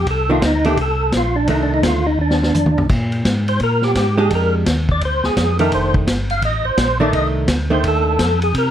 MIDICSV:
0, 0, Header, 1, 5, 480
1, 0, Start_track
1, 0, Tempo, 353149
1, 94, Time_signature, 4, 2, 24, 8
1, 11835, End_track
2, 0, Start_track
2, 0, Title_t, "Tonewheel organ"
2, 0, Program_c, 0, 16
2, 144, Note_on_c, 0, 69, 97
2, 417, Note_off_c, 0, 69, 0
2, 418, Note_on_c, 0, 65, 86
2, 579, Note_off_c, 0, 65, 0
2, 618, Note_on_c, 0, 63, 75
2, 894, Note_off_c, 0, 63, 0
2, 916, Note_on_c, 0, 67, 89
2, 1068, Note_off_c, 0, 67, 0
2, 1105, Note_on_c, 0, 69, 90
2, 1529, Note_off_c, 0, 69, 0
2, 1585, Note_on_c, 0, 65, 77
2, 1846, Note_on_c, 0, 62, 85
2, 1858, Note_off_c, 0, 65, 0
2, 2013, Note_off_c, 0, 62, 0
2, 2044, Note_on_c, 0, 63, 80
2, 2186, Note_off_c, 0, 63, 0
2, 2213, Note_on_c, 0, 62, 75
2, 2351, Note_off_c, 0, 62, 0
2, 2363, Note_on_c, 0, 63, 72
2, 2506, Note_off_c, 0, 63, 0
2, 2522, Note_on_c, 0, 65, 94
2, 2807, Note_off_c, 0, 65, 0
2, 2807, Note_on_c, 0, 63, 83
2, 2974, Note_off_c, 0, 63, 0
2, 3009, Note_on_c, 0, 62, 71
2, 3900, Note_off_c, 0, 62, 0
2, 4740, Note_on_c, 0, 72, 88
2, 4901, Note_off_c, 0, 72, 0
2, 4940, Note_on_c, 0, 70, 81
2, 5217, Note_off_c, 0, 70, 0
2, 5219, Note_on_c, 0, 67, 78
2, 5659, Note_off_c, 0, 67, 0
2, 5716, Note_on_c, 0, 68, 83
2, 5870, Note_off_c, 0, 68, 0
2, 5916, Note_on_c, 0, 70, 78
2, 6185, Note_off_c, 0, 70, 0
2, 6680, Note_on_c, 0, 74, 91
2, 6832, Note_off_c, 0, 74, 0
2, 6866, Note_on_c, 0, 72, 74
2, 7140, Note_off_c, 0, 72, 0
2, 7141, Note_on_c, 0, 68, 91
2, 7580, Note_off_c, 0, 68, 0
2, 7620, Note_on_c, 0, 70, 81
2, 7781, Note_off_c, 0, 70, 0
2, 7806, Note_on_c, 0, 72, 81
2, 8090, Note_off_c, 0, 72, 0
2, 8573, Note_on_c, 0, 77, 106
2, 8737, Note_off_c, 0, 77, 0
2, 8766, Note_on_c, 0, 75, 79
2, 9037, Note_on_c, 0, 72, 89
2, 9049, Note_off_c, 0, 75, 0
2, 9486, Note_off_c, 0, 72, 0
2, 9514, Note_on_c, 0, 74, 89
2, 9687, Note_off_c, 0, 74, 0
2, 9706, Note_on_c, 0, 75, 96
2, 9887, Note_off_c, 0, 75, 0
2, 10504, Note_on_c, 0, 72, 79
2, 10662, Note_off_c, 0, 72, 0
2, 10707, Note_on_c, 0, 69, 82
2, 11413, Note_off_c, 0, 69, 0
2, 11463, Note_on_c, 0, 68, 87
2, 11621, Note_off_c, 0, 68, 0
2, 11660, Note_on_c, 0, 70, 80
2, 11835, Note_off_c, 0, 70, 0
2, 11835, End_track
3, 0, Start_track
3, 0, Title_t, "Hollow-body jazz guitar"
3, 0, Program_c, 1, 26
3, 401, Note_on_c, 1, 51, 72
3, 407, Note_on_c, 1, 57, 65
3, 417, Note_on_c, 1, 62, 78
3, 558, Note_off_c, 1, 51, 0
3, 560, Note_off_c, 1, 57, 0
3, 566, Note_off_c, 1, 62, 0
3, 887, Note_on_c, 1, 51, 63
3, 893, Note_on_c, 1, 57, 73
3, 897, Note_on_c, 1, 62, 84
3, 1041, Note_off_c, 1, 51, 0
3, 1044, Note_off_c, 1, 57, 0
3, 1046, Note_off_c, 1, 62, 0
3, 2015, Note_on_c, 1, 51, 50
3, 2025, Note_on_c, 1, 57, 57
3, 2037, Note_on_c, 1, 62, 58
3, 2742, Note_off_c, 1, 51, 0
3, 2747, Note_off_c, 1, 57, 0
3, 2752, Note_off_c, 1, 62, 0
3, 5675, Note_on_c, 1, 56, 69
3, 5681, Note_on_c, 1, 62, 76
3, 5687, Note_on_c, 1, 67, 85
3, 6299, Note_off_c, 1, 56, 0
3, 6302, Note_off_c, 1, 62, 0
3, 6305, Note_off_c, 1, 67, 0
3, 7605, Note_on_c, 1, 51, 74
3, 7611, Note_on_c, 1, 57, 72
3, 7624, Note_on_c, 1, 62, 80
3, 8224, Note_off_c, 1, 51, 0
3, 8227, Note_off_c, 1, 57, 0
3, 8233, Note_off_c, 1, 62, 0
3, 9515, Note_on_c, 1, 51, 74
3, 9525, Note_on_c, 1, 57, 87
3, 9530, Note_on_c, 1, 62, 80
3, 10137, Note_off_c, 1, 51, 0
3, 10142, Note_off_c, 1, 57, 0
3, 10145, Note_off_c, 1, 62, 0
3, 10469, Note_on_c, 1, 51, 65
3, 10472, Note_on_c, 1, 57, 69
3, 10481, Note_on_c, 1, 62, 74
3, 11094, Note_off_c, 1, 51, 0
3, 11095, Note_off_c, 1, 57, 0
3, 11100, Note_off_c, 1, 62, 0
3, 11835, End_track
4, 0, Start_track
4, 0, Title_t, "Tonewheel organ"
4, 0, Program_c, 2, 16
4, 89, Note_on_c, 2, 36, 86
4, 558, Note_off_c, 2, 36, 0
4, 564, Note_on_c, 2, 38, 93
4, 1035, Note_off_c, 2, 38, 0
4, 1047, Note_on_c, 2, 36, 86
4, 1517, Note_off_c, 2, 36, 0
4, 1523, Note_on_c, 2, 34, 86
4, 1995, Note_off_c, 2, 34, 0
4, 2010, Note_on_c, 2, 36, 83
4, 2479, Note_off_c, 2, 36, 0
4, 2491, Note_on_c, 2, 38, 91
4, 2959, Note_on_c, 2, 39, 87
4, 2960, Note_off_c, 2, 38, 0
4, 3434, Note_off_c, 2, 39, 0
4, 3445, Note_on_c, 2, 41, 90
4, 3606, Note_on_c, 2, 39, 53
4, 3607, Note_off_c, 2, 41, 0
4, 3772, Note_off_c, 2, 39, 0
4, 3772, Note_on_c, 2, 36, 64
4, 3924, Note_off_c, 2, 36, 0
4, 3932, Note_on_c, 2, 46, 83
4, 4401, Note_off_c, 2, 46, 0
4, 4415, Note_on_c, 2, 44, 87
4, 4883, Note_off_c, 2, 44, 0
4, 4895, Note_on_c, 2, 46, 92
4, 5363, Note_off_c, 2, 46, 0
4, 5374, Note_on_c, 2, 44, 82
4, 5842, Note_off_c, 2, 44, 0
4, 5853, Note_on_c, 2, 41, 85
4, 6321, Note_off_c, 2, 41, 0
4, 6332, Note_on_c, 2, 39, 90
4, 6801, Note_off_c, 2, 39, 0
4, 6811, Note_on_c, 2, 38, 86
4, 7099, Note_off_c, 2, 38, 0
4, 7120, Note_on_c, 2, 38, 41
4, 7209, Note_off_c, 2, 38, 0
4, 7292, Note_on_c, 2, 41, 90
4, 7761, Note_off_c, 2, 41, 0
4, 7773, Note_on_c, 2, 29, 85
4, 8241, Note_off_c, 2, 29, 0
4, 8251, Note_on_c, 2, 31, 91
4, 8720, Note_off_c, 2, 31, 0
4, 8731, Note_on_c, 2, 33, 90
4, 9019, Note_off_c, 2, 33, 0
4, 9035, Note_on_c, 2, 33, 38
4, 9124, Note_off_c, 2, 33, 0
4, 9208, Note_on_c, 2, 34, 90
4, 9677, Note_off_c, 2, 34, 0
4, 9684, Note_on_c, 2, 36, 86
4, 10155, Note_off_c, 2, 36, 0
4, 10169, Note_on_c, 2, 38, 95
4, 10638, Note_off_c, 2, 38, 0
4, 10651, Note_on_c, 2, 39, 86
4, 11118, Note_off_c, 2, 39, 0
4, 11129, Note_on_c, 2, 41, 90
4, 11597, Note_off_c, 2, 41, 0
4, 11614, Note_on_c, 2, 48, 80
4, 11835, Note_off_c, 2, 48, 0
4, 11835, End_track
5, 0, Start_track
5, 0, Title_t, "Drums"
5, 87, Note_on_c, 9, 36, 19
5, 89, Note_on_c, 9, 51, 59
5, 223, Note_off_c, 9, 36, 0
5, 225, Note_off_c, 9, 51, 0
5, 567, Note_on_c, 9, 36, 26
5, 571, Note_on_c, 9, 38, 70
5, 572, Note_on_c, 9, 44, 57
5, 572, Note_on_c, 9, 51, 73
5, 703, Note_off_c, 9, 36, 0
5, 707, Note_off_c, 9, 38, 0
5, 708, Note_off_c, 9, 44, 0
5, 708, Note_off_c, 9, 51, 0
5, 877, Note_on_c, 9, 51, 45
5, 1012, Note_off_c, 9, 51, 0
5, 1047, Note_on_c, 9, 36, 18
5, 1050, Note_on_c, 9, 51, 54
5, 1183, Note_off_c, 9, 36, 0
5, 1186, Note_off_c, 9, 51, 0
5, 1525, Note_on_c, 9, 38, 63
5, 1527, Note_on_c, 9, 44, 52
5, 1527, Note_on_c, 9, 51, 61
5, 1528, Note_on_c, 9, 36, 18
5, 1661, Note_off_c, 9, 38, 0
5, 1663, Note_off_c, 9, 44, 0
5, 1663, Note_off_c, 9, 51, 0
5, 1664, Note_off_c, 9, 36, 0
5, 2005, Note_on_c, 9, 51, 57
5, 2007, Note_on_c, 9, 36, 22
5, 2141, Note_off_c, 9, 51, 0
5, 2143, Note_off_c, 9, 36, 0
5, 2488, Note_on_c, 9, 38, 73
5, 2489, Note_on_c, 9, 44, 61
5, 2489, Note_on_c, 9, 51, 67
5, 2490, Note_on_c, 9, 36, 25
5, 2624, Note_off_c, 9, 38, 0
5, 2625, Note_off_c, 9, 44, 0
5, 2625, Note_off_c, 9, 51, 0
5, 2626, Note_off_c, 9, 36, 0
5, 3133, Note_on_c, 9, 38, 53
5, 3269, Note_off_c, 9, 38, 0
5, 3304, Note_on_c, 9, 38, 67
5, 3440, Note_off_c, 9, 38, 0
5, 3457, Note_on_c, 9, 47, 57
5, 3458, Note_on_c, 9, 44, 57
5, 3593, Note_off_c, 9, 47, 0
5, 3594, Note_off_c, 9, 44, 0
5, 3614, Note_on_c, 9, 47, 66
5, 3750, Note_off_c, 9, 47, 0
5, 3776, Note_on_c, 9, 43, 89
5, 3912, Note_off_c, 9, 43, 0
5, 3932, Note_on_c, 9, 49, 69
5, 3937, Note_on_c, 9, 36, 69
5, 4068, Note_off_c, 9, 49, 0
5, 4073, Note_off_c, 9, 36, 0
5, 4240, Note_on_c, 9, 51, 46
5, 4376, Note_off_c, 9, 51, 0
5, 4417, Note_on_c, 9, 36, 19
5, 4417, Note_on_c, 9, 38, 74
5, 4418, Note_on_c, 9, 44, 59
5, 4418, Note_on_c, 9, 51, 70
5, 4553, Note_off_c, 9, 36, 0
5, 4553, Note_off_c, 9, 38, 0
5, 4554, Note_off_c, 9, 44, 0
5, 4554, Note_off_c, 9, 51, 0
5, 4728, Note_on_c, 9, 51, 46
5, 4863, Note_off_c, 9, 51, 0
5, 4889, Note_on_c, 9, 51, 51
5, 4894, Note_on_c, 9, 36, 20
5, 5025, Note_off_c, 9, 51, 0
5, 5030, Note_off_c, 9, 36, 0
5, 5190, Note_on_c, 9, 38, 36
5, 5326, Note_off_c, 9, 38, 0
5, 5373, Note_on_c, 9, 38, 59
5, 5374, Note_on_c, 9, 44, 52
5, 5374, Note_on_c, 9, 51, 65
5, 5376, Note_on_c, 9, 36, 20
5, 5508, Note_off_c, 9, 38, 0
5, 5510, Note_off_c, 9, 44, 0
5, 5510, Note_off_c, 9, 51, 0
5, 5512, Note_off_c, 9, 36, 0
5, 5851, Note_on_c, 9, 51, 59
5, 5855, Note_on_c, 9, 36, 20
5, 5986, Note_off_c, 9, 51, 0
5, 5991, Note_off_c, 9, 36, 0
5, 6335, Note_on_c, 9, 36, 20
5, 6336, Note_on_c, 9, 38, 72
5, 6337, Note_on_c, 9, 44, 50
5, 6337, Note_on_c, 9, 51, 73
5, 6471, Note_off_c, 9, 36, 0
5, 6472, Note_off_c, 9, 38, 0
5, 6473, Note_off_c, 9, 44, 0
5, 6473, Note_off_c, 9, 51, 0
5, 6643, Note_on_c, 9, 36, 46
5, 6779, Note_off_c, 9, 36, 0
5, 6814, Note_on_c, 9, 36, 17
5, 6814, Note_on_c, 9, 51, 56
5, 6950, Note_off_c, 9, 36, 0
5, 6950, Note_off_c, 9, 51, 0
5, 7116, Note_on_c, 9, 38, 53
5, 7252, Note_off_c, 9, 38, 0
5, 7293, Note_on_c, 9, 36, 23
5, 7294, Note_on_c, 9, 38, 68
5, 7295, Note_on_c, 9, 44, 61
5, 7295, Note_on_c, 9, 51, 62
5, 7429, Note_off_c, 9, 36, 0
5, 7430, Note_off_c, 9, 38, 0
5, 7431, Note_off_c, 9, 44, 0
5, 7431, Note_off_c, 9, 51, 0
5, 7598, Note_on_c, 9, 51, 52
5, 7734, Note_off_c, 9, 51, 0
5, 7771, Note_on_c, 9, 51, 59
5, 7774, Note_on_c, 9, 36, 19
5, 7907, Note_off_c, 9, 51, 0
5, 7910, Note_off_c, 9, 36, 0
5, 8078, Note_on_c, 9, 36, 61
5, 8214, Note_off_c, 9, 36, 0
5, 8252, Note_on_c, 9, 36, 24
5, 8255, Note_on_c, 9, 38, 71
5, 8256, Note_on_c, 9, 44, 65
5, 8256, Note_on_c, 9, 51, 71
5, 8388, Note_off_c, 9, 36, 0
5, 8391, Note_off_c, 9, 38, 0
5, 8392, Note_off_c, 9, 44, 0
5, 8392, Note_off_c, 9, 51, 0
5, 8559, Note_on_c, 9, 51, 46
5, 8695, Note_off_c, 9, 51, 0
5, 8728, Note_on_c, 9, 51, 55
5, 8730, Note_on_c, 9, 36, 22
5, 8864, Note_off_c, 9, 51, 0
5, 8866, Note_off_c, 9, 36, 0
5, 9207, Note_on_c, 9, 38, 71
5, 9208, Note_on_c, 9, 36, 23
5, 9209, Note_on_c, 9, 44, 52
5, 9209, Note_on_c, 9, 51, 72
5, 9343, Note_off_c, 9, 38, 0
5, 9344, Note_off_c, 9, 36, 0
5, 9345, Note_off_c, 9, 44, 0
5, 9345, Note_off_c, 9, 51, 0
5, 9689, Note_on_c, 9, 36, 25
5, 9692, Note_on_c, 9, 51, 61
5, 9825, Note_off_c, 9, 36, 0
5, 9828, Note_off_c, 9, 51, 0
5, 10162, Note_on_c, 9, 38, 74
5, 10163, Note_on_c, 9, 44, 59
5, 10163, Note_on_c, 9, 51, 75
5, 10169, Note_on_c, 9, 36, 23
5, 10298, Note_off_c, 9, 38, 0
5, 10299, Note_off_c, 9, 44, 0
5, 10299, Note_off_c, 9, 51, 0
5, 10305, Note_off_c, 9, 36, 0
5, 10651, Note_on_c, 9, 51, 62
5, 10652, Note_on_c, 9, 36, 23
5, 10787, Note_off_c, 9, 51, 0
5, 10788, Note_off_c, 9, 36, 0
5, 11131, Note_on_c, 9, 38, 60
5, 11132, Note_on_c, 9, 36, 25
5, 11132, Note_on_c, 9, 44, 51
5, 11132, Note_on_c, 9, 51, 67
5, 11267, Note_off_c, 9, 38, 0
5, 11268, Note_off_c, 9, 36, 0
5, 11268, Note_off_c, 9, 44, 0
5, 11268, Note_off_c, 9, 51, 0
5, 11441, Note_on_c, 9, 51, 48
5, 11577, Note_off_c, 9, 51, 0
5, 11614, Note_on_c, 9, 36, 17
5, 11615, Note_on_c, 9, 51, 66
5, 11750, Note_off_c, 9, 36, 0
5, 11751, Note_off_c, 9, 51, 0
5, 11835, End_track
0, 0, End_of_file